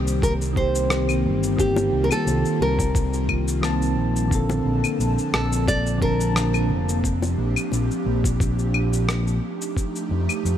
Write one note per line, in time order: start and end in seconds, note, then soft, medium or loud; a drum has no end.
0.00 1.26 C2 loud
0.00 0.51 D#3 medium
0.00 4.27 D#3 medium
0.00 4.28 G3 medium
0.00 0.52 A#3 medium
0.00 4.27 A#3 medium
0.00 0.53 C4 medium
0.00 9.39 C4 medium
0.00 0.54 G4 medium
0.00 1.55 G4 medium
0.00 0.23 C5 loud
0.07 cabasa medium
0.22 0.32 A#4 medium
0.22 kick loud
0.22 cabasa medium
0.41 cabasa soft
0.53 1.53 D#3 medium
0.53 1.54 A#3 medium
0.53 kick loud
0.57 1.55 C4 medium
0.57 1.56 G4 medium
0.57 1.21 C5 medium
0.75 cabasa medium
0.90 cross-stick medium
0.90 cabasa medium
1.09 cabasa soft
1.09 claves medium
1.25 1.88 G1 medium
1.43 cabasa medium
1.57 1.72 D#3 medium
1.57 1.72 A#3 medium
1.57 1.73 C4 medium
1.57 4.29 F4 medium
1.57 2.05 G4 medium
1.57 1.73 G4 loud
1.57 kick loud
1.57 cabasa medium
1.76 high bongo medium
1.76 cabasa soft
1.93 2.07 C2 loud
2.04 2.11 A#4 medium
2.11 2.62 A4 loud
2.11 cabasa medium
2.11 claves medium
2.27 2.41 C2 medium
2.27 high bongo soft
2.27 cabasa medium
2.45 cabasa soft
2.61 3.97 C2 loud
2.61 3.94 A#4 loud
2.79 kick loud
2.79 high bongo soft
2.79 cabasa medium
2.95 kick loud
2.95 cabasa medium
3.13 cabasa soft
3.29 kick medium
3.29 claves medium
3.48 cabasa medium
3.61 4.27 D#3 medium
3.61 4.27 A#3 medium
3.61 4.28 C4 medium
3.61 4.28 A5 loud
3.61 cross-stick medium
3.61 cabasa medium
3.82 cabasa soft
3.97 4.60 A#1 medium
4.16 cabasa medium
4.28 5.96 D3 medium
4.28 10.58 F3 medium
4.28 5.97 A#3 medium
4.28 9.39 A#3 medium
4.28 10.58 D4 medium
4.28 7.02 A5 medium
4.28 kick loud
4.32 5.98 C4 medium
4.32 6.00 A4 medium
4.32 cabasa medium
4.49 high bongo medium
4.49 cabasa soft
4.65 4.80 A#1 medium
4.84 cabasa medium
4.84 claves medium
5.00 5.14 A#1 medium
5.00 cabasa medium
5.18 cabasa soft
5.34 6.71 A#1 loud
5.34 5.68 A4 medium
5.34 cross-stick medium
5.52 cabasa medium
5.68 6.02 D5 loud
5.68 kick loud
5.68 cabasa medium
5.87 cabasa soft
5.98 6.98 D3 medium
5.98 6.99 A#3 medium
5.98 kick loud
6.02 7.01 C4 medium
6.02 6.66 A#4 medium
6.02 7.02 A5 medium
6.21 cabasa medium
6.36 cross-stick medium
6.36 cabasa medium
6.54 cabasa soft
6.54 claves medium
6.70 7.33 F1 medium
6.89 cabasa medium
7.04 9.40 G4 medium
7.04 kick loud
7.04 cabasa medium
7.22 high bongo medium
7.22 cabasa soft
7.38 7.53 A#1 loud
7.56 cabasa medium
7.56 claves medium
7.72 7.87 A#1 medium
7.72 high bongo soft
7.72 cabasa medium
7.91 cabasa soft
8.06 9.37 A#1 loud
8.24 kick medium
8.24 high bongo soft
8.24 cabasa medium
8.40 kick loud
8.40 cabasa medium
8.59 cabasa soft
8.74 claves medium
8.93 cabasa medium
9.09 cross-stick medium
9.09 cabasa medium
9.27 cabasa soft
9.43 10.58 A3 medium
9.43 10.58 D#4 medium
9.43 10.58 G4 loud
9.61 cabasa medium
9.77 kick loud
9.77 cabasa medium
9.96 cabasa soft
10.11 10.25 F2 loud
10.29 cabasa medium
10.29 claves medium
10.45 10.58 F2 medium
10.45 cabasa medium